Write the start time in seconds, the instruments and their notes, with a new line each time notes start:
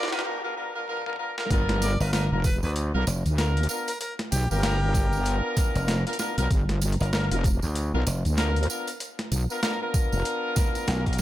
Already playing: riser
0.03 snare
0.08 snare
0.12 horn section B3 D4 F4 A#4, harmonica B4, snare
0.16 snare
0.19 snare
0.22 horn section B3 D4 F4 A#4, snare
0.44 horn section B3 D4 F4 A#4
0.57 horn section B3 D4 F4 A#4
0.76 horn section B3 D4 F4 A#4
0.88 horn section B3 D4 F4 A#4, high tom
0.93 high tom
0.97 high tom
1.02 high tom
1.06 horn section B3 D4 F4 A#4, high tom
1.10 high tom
1.13 high tom
1.16 horn section B3 D4 F4 A#4, high tom
1.38 horn section B3 D4 F4 A#4, snare
1.50 wobble bass G1, horn section B3 D4 F4 A#4, kick, closed hi-hat, tambourine
1.69 snare, closed hi-hat
1.82 harmonica D5, closed hi-hat, tambourine
2.00 slap bass G1, horn section B3 D4 F4 A#4, harmonica B4, tambourine
2.13 horn section B3 D4 F4 A#4, harmonica B4, snare, closed hi-hat, tambourine
2.32 wobble bass F1, horn section B3 D4 F4 A#4
2.44 harmonica B4, kick, closed hi-hat, tambourine
2.63 slap bass D2, harmonica B4, tambourine
2.76 closed hi-hat, tambourine
2.94 wobble bass B1, horn section B3 D4 F4 A#4
3.07 slap bass F1, snare, closed hi-hat, tambourine
3.26 wobble bass D2, closed hi-hat, tambourine
3.38 horn section B3 D4 F4 A#4, snare, closed hi-hat, tambourine
3.57 closed hi-hat
3.63 closed hi-hat
3.69 horn section B3 D4 F4 A#4, tambourine
3.88 harmonica A#4, closed hi-hat, tambourine
4.00 harmonica A#4, closed hi-hat, tambourine
4.19 snare, closed hi-hat
4.32 wobble bass B1, harmonica G4, closed hi-hat, tambourine
4.51 wobble bass G1, horn section B3 D4 F4 A#4, harmonica G4, tambourine
4.63 horn section B3 D4 F4 A#4, snare, closed hi-hat, tambourine
4.82 horn section B3 D4 F4 A#4
4.94 kick, closed hi-hat, tambourine
5.13 tambourine
5.25 closed hi-hat, tambourine
5.57 kick, snare, closed hi-hat, tambourine
5.75 slap bass F1, closed hi-hat, tambourine
5.88 snare, closed hi-hat, tambourine
6.07 horn section B3 D4 F4 A#4, closed hi-hat
6.13 closed hi-hat
6.19 horn section B3 D4 F4 A#4, snare, tambourine
6.38 wobble bass B1, horn section B3 D4 F4 A#4, closed hi-hat, tambourine
6.51 wobble bass G1, kick, closed hi-hat, tambourine
6.69 snare, closed hi-hat
6.81 closed hi-hat, tambourine
6.92 closed hi-hat
7.00 slap bass G1, horn section B3 D4 F4 A#4, closed hi-hat, tambourine
7.13 horn section B3 D4 F4 A#4, snare, tambourine
7.31 wobble bass F1, horn section B3 D4 F4 A#4, closed hi-hat
7.44 kick, closed hi-hat, tambourine
7.62 slap bass D2, tambourine
7.75 closed hi-hat, tambourine
7.94 wobble bass B1, horn section B3 D4 F4 A#4
8.07 slap bass F1, snare, closed hi-hat, tambourine
8.25 wobble bass D2, closed hi-hat, tambourine
8.37 horn section B3 D4 F4 A#4, snare, closed hi-hat, tambourine
8.56 closed hi-hat
8.63 closed hi-hat
8.69 horn section B3 D4 F4 A#4, tambourine
8.87 closed hi-hat, tambourine
9.00 closed hi-hat, tambourine
9.19 snare, closed hi-hat
9.32 wobble bass B1, closed hi-hat, tambourine
9.50 horn section B3 D4 F4 A#4, tambourine
9.63 horn section B3 D4 F4 A#4, snare, closed hi-hat, tambourine
9.82 horn section B3 D4 F4 A#4
9.94 kick, closed hi-hat, tambourine
10.12 wobble bass F1, tambourine
10.25 closed hi-hat, tambourine
10.56 kick, snare, closed hi-hat, tambourine
10.59 snare
10.62 snare
10.65 snare
10.67 snare
10.70 snare
10.73 snare, closed hi-hat, tambourine
10.87 slap bass B1, snare, closed hi-hat, tambourine
11.06 horn section B3 D4 F4 A#4, kick, closed hi-hat
11.13 closed hi-hat
11.18 tambourine